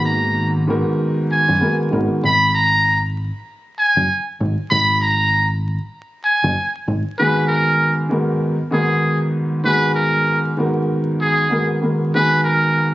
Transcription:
Already playing: fingered electric bass G#1, upright piano G#2 D#3 A#3 B3 F#4
0.05 muted trumpet A#5
0.67 upright piano G#2 D#3 B3 F#4 A#4
1.32 muted trumpet G#5
1.49 fingered electric bass F#1
1.59 upright piano G#2 D#3 B3 F#4 A#4
1.91 fingered electric bass G#1, upright piano G#2 D#3 B3 F#4 A#4
2.24 fingered electric bass G#1, muted trumpet B5
2.54 muted trumpet A#5
3.79 muted trumpet G#5
3.97 fingered electric bass F#1
4.40 fingered electric bass G#1
4.70 fingered electric bass G#1, muted trumpet B5
5.01 muted trumpet A#5
6.24 muted trumpet G#5
6.44 fingered electric bass F#1
6.88 fingered electric bass G#1
7.18 upright piano G#2 D#3 B3 F#4, muted trumpet B4
7.22 upright piano G#4
7.47 muted trumpet A#4
8.09 upright piano G#2 D#3 B3 F#4 A#4
8.71 upright piano G#2 D#3 B3 F#4 A#4, muted trumpet G#4
9.64 upright piano G#2 D#3 B3 F#4 G#4, muted trumpet B4
9.95 muted trumpet A#4
10.57 upright piano G#2 D#3 B3 F#4 A#4
11.21 muted trumpet G#4
11.49 upright piano G#2 D#3 B3 F#4 A#4
11.81 upright piano G#2 D#3 B3 F#4 A#4
12.14 upright piano G#2 D#3 B3 F#4 G#4, muted trumpet B4
12.44 muted trumpet A#4

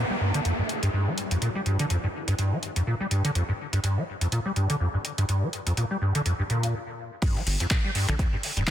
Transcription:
Already playing: downlifter
0.10 acid bass G3
0.21 acid bass G2
0.34 acid bass D3, closed hi-hat
0.45 acid bass F2, closed hi-hat
0.59 acid bass G2
0.69 closed hi-hat
0.83 acid bass G2, closed hi-hat
0.93 acid bass G2
1.07 acid bass G3
1.18 closed hi-hat
1.31 acid bass F2, closed hi-hat
1.42 acid bass A#2, closed hi-hat
1.55 acid bass G3
1.66 acid bass G2, closed hi-hat
1.79 acid bass D3, closed hi-hat
1.90 acid bass F2, closed hi-hat
2.04 acid bass G2
2.28 acid bass G2, closed hi-hat
2.39 acid bass G2, closed hi-hat
2.52 acid bass G3
2.63 closed hi-hat
2.76 acid bass F2, closed hi-hat
2.87 acid bass A#2
3.00 acid bass G3
3.11 acid bass G2, closed hi-hat
3.24 acid bass D3, closed hi-hat
3.35 acid bass F2, closed hi-hat
3.49 acid bass G2
3.73 acid bass G2, closed hi-hat
3.84 acid bass G2, closed hi-hat
3.97 acid bass G3
4.21 acid bass F2, closed hi-hat
4.32 acid bass A#2, closed hi-hat
4.46 acid bass G3
4.56 acid bass G2, closed hi-hat
4.70 acid bass D3, closed hi-hat
4.80 acid bass F2
4.94 acid bass G2
5.05 closed hi-hat
5.18 acid bass G2, closed hi-hat
5.29 acid bass G2, closed hi-hat
5.42 acid bass G3
5.53 closed hi-hat
5.67 acid bass F2, closed hi-hat
5.77 acid bass A#2, closed hi-hat
5.91 acid bass G3
6.02 acid bass G2
6.15 acid bass D3, closed hi-hat
6.26 acid bass F2, closed hi-hat
6.39 acid bass G2
6.50 acid bass A#2, closed hi-hat
6.63 closed hi-hat
7.22 acid bass G2, kick, closed hi-hat, crash, ride
7.35 acid bass G3, snare
7.47 sub bass G1, closed hi-hat, open hi-hat, ride
7.60 acid bass F2, closed hi-hat
7.71 acid bass A#2, kick, snare, clap, closed hi-hat
7.84 acid bass G3, snare
7.95 acid bass G2, closed hi-hat, open hi-hat, ride
8.08 sub bass A#1, acid bass D3, finger snap, closed hi-hat
8.19 acid bass F2, kick, closed hi-hat, ride
8.33 acid bass G2
8.43 closed hi-hat, open hi-hat, ride
8.57 sub bass D1, acid bass G2, closed hi-hat
8.67 acid bass G2, kick, snare, clap, ride

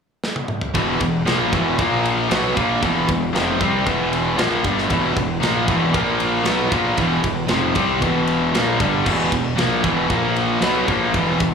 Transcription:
0.24 snare
0.36 high tom
0.48 mid tom
0.61 floor tom
0.75 fingered electric bass E1, distorted electric guitar E2 B2 E3, kick, ride
1.00 fingered electric bass E1, distorted electric guitar E2 B2, kick, ride
1.26 fingered electric bass A#1, distorted electric guitar A#2 F3 A#3, snare, ride
1.51 fingered electric bass E1, distorted electric guitar E2 B2 E3, kick, ride
1.78 fingered electric bass A#1, distorted electric guitar A#2 F3 A#3, kick, ride
2.05 ride
2.30 fingered electric bass B1, distorted electric guitar B2 F#3 B3, snare, ride
2.56 fingered electric bass A#1, distorted electric guitar A#2 F3 A#3, kick, ride
2.83 fingered electric bass E1, distorted electric guitar E2 B2 E3, kick, ride
3.09 fingered electric bass E1, distorted electric guitar E2 B2, kick, ride
3.33 fingered electric bass F1, distorted electric guitar F2 C3 F3, snare, ride
3.59 fingered electric bass C2, distorted electric guitar C3 G3 C4, kick, ride
3.85 fingered electric bass E1, distorted electric guitar E2 B2 E3, kick, ride
4.13 ride
4.36 fingered electric bass A#1, distorted electric guitar A#2 F3 A#3, snare, ride
4.63 fingered electric bass G1, distorted electric guitar G2 D3 G3, kick, ride
4.78 snare
4.89 fingered electric bass E1, distorted electric guitar E2 B2 E3, kick, ride
5.13 fingered electric bass E1, distorted electric guitar E2 B2, kick, ride
5.40 fingered electric bass A#1, distorted electric guitar A#2 F3 A#3, snare, ride
5.67 fingered electric bass E1, distorted electric guitar E2 B2 E3, kick, ride
5.93 fingered electric bass A#1, distorted electric guitar A#2 F3 A#3, kick, ride
6.20 ride
6.44 fingered electric bass B1, distorted electric guitar B2 F#3 B3, snare, ride
6.71 fingered electric bass A#1, distorted electric guitar A#2 F3 A#3, kick, ride
6.96 fingered electric bass E1, distorted electric guitar E2 B2 E3, kick, ride
7.23 fingered electric bass E1, distorted electric guitar E2 B2, kick, ride
7.48 fingered electric bass F1, distorted electric guitar F2 C3 F3, snare, ride
7.74 fingered electric bass C2, distorted electric guitar C3 G3 C4, kick, ride
8.01 fingered electric bass E1, distorted electric guitar E2 B2 E3, kick, ride
8.27 ride
8.54 fingered electric bass A#1, distorted electric guitar A#2 F3 A#3, snare, ride
8.79 fingered electric bass G1, distorted electric guitar G2 D3 G3, kick, ride
9.05 fingered electric bass E1, distorted electric guitar E2 B2 E3, kick, crash
9.31 fingered electric bass E1, distorted electric guitar E2 B2, kick, ride
9.57 fingered electric bass A#1, distorted electric guitar A#2 F3 A#3, snare, ride
9.83 fingered electric bass E1, distorted electric guitar E2 B2 E3, kick, ride
10.09 fingered electric bass A#1, distorted electric guitar A#2 F3 A#3, kick, ride
10.36 ride
10.61 fingered electric bass B1, distorted electric guitar B2 F#3 B3, snare, ride
10.87 fingered electric bass A#1, distorted electric guitar A#2 F3 A#3, kick, ride
11.13 fingered electric bass E1, distorted electric guitar E2 B2 E3, kick, ride
11.40 fingered electric bass E1, distorted electric guitar E2 B2, kick, ride

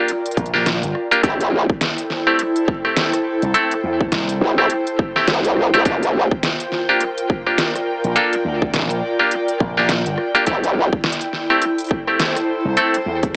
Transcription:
Already playing: clav A#3 D4 F4 G4, analog synth pad F4 A#4 D5 G5
0.08 closed hi-hat
0.26 closed hi-hat
0.31 closed hi-hat
0.37 slap bass A#1, kick, closed hi-hat
0.46 closed hi-hat
0.54 clav A#3 D4 F4 G4, snare
0.66 snare, closed hi-hat
0.83 slap bass G1, closed hi-hat
0.95 cross-stick
1.11 clav A#3 D4 F4 G4, closed hi-hat
1.23 wobble bass A1, clav A3 C4 E4 G4, analog synth pad E4, kick, closed hi-hat
1.38 analog synth pad A4, closed hi-hat
1.47 analog synth pad C5
1.70 kick
1.81 snare, closed hi-hat
1.98 closed hi-hat
2.10 snare
2.27 clav A3 C4 E4 G4
2.39 cross-stick, closed hi-hat
2.56 closed hi-hat
2.68 kick
2.85 clav A3 C4 E4 G4, cross-stick
2.97 snare, closed hi-hat
3.13 cross-stick, closed hi-hat
3.42 slap bass C2, closed hi-hat
3.54 clav A3 C4 E4 A4, closed hi-hat
3.71 closed hi-hat
3.84 slap bass E2
4.00 kick
4.12 slap bass C2, snare, closed hi-hat
4.29 closed hi-hat
4.41 wobble bass A1
4.58 clav A3 C4 E4 G4
4.70 closed hi-hat
4.87 closed hi-hat
4.99 kick
5.16 clav A3 C4 E4 G4, snare
5.28 wobble bass C2, snare, closed hi-hat
5.44 closed hi-hat
5.57 cross-stick
5.73 wobble bass C2, clav A3 C4 E4 G4, closed hi-hat
5.85 wobble bass G1, clav A#3 D4 F4 G4, analog synth pad F4, kick, closed hi-hat
6.03 closed hi-hat
6.31 analog synth pad A#4, kick
6.43 snare, closed hi-hat
6.60 closed hi-hat
6.72 snare
6.89 clav A#3 D4 F4 G4
7.00 cross-stick, closed hi-hat
7.18 closed hi-hat
7.30 kick
7.45 clav A#3 D4 F4 G4, analog synth pad D5, cross-stick
7.58 snare, closed hi-hat
7.75 cross-stick, closed hi-hat
8.04 slap bass A#1, closed hi-hat
8.16 clav A#3 D4 F4 A4, closed hi-hat
8.33 closed hi-hat
8.45 slap bass D2
8.62 kick
8.73 slap bass A#1, snare, closed hi-hat
8.76 snare
8.79 snare
8.82 snare
8.88 snare, closed hi-hat
9.19 clav A#3 D4 F4 G4
9.31 closed hi-hat
9.48 closed hi-hat
9.60 slap bass A#1, kick
9.77 clav A#3 D4 F4 G4, snare
9.89 snare, closed hi-hat
10.06 slap bass G1, closed hi-hat
10.18 cross-stick
10.35 clav A#3 D4 F4 G4, closed hi-hat
10.46 wobble bass A1, clav A3 C4 E4 G4, analog synth pad E4, kick, closed hi-hat
10.64 closed hi-hat
10.93 kick
11.04 snare
11.12 closed hi-hat
11.20 analog synth pad A4, closed hi-hat
11.33 snare
11.50 clav A3 C4 E4 G4
11.60 analog synth pad C5, cross-stick, closed hi-hat
11.78 closed hi-hat
11.80 closed hi-hat
11.87 closed hi-hat
11.89 kick, closed hi-hat
12.07 clav A3 C4 E4 G4, cross-stick
12.20 snare, closed hi-hat
12.36 cross-stick, closed hi-hat
12.65 slap bass C2
12.77 clav A3 C4 E4 A4, closed hi-hat
12.94 closed hi-hat
13.06 slap bass E2
13.23 kick, closed hi-hat

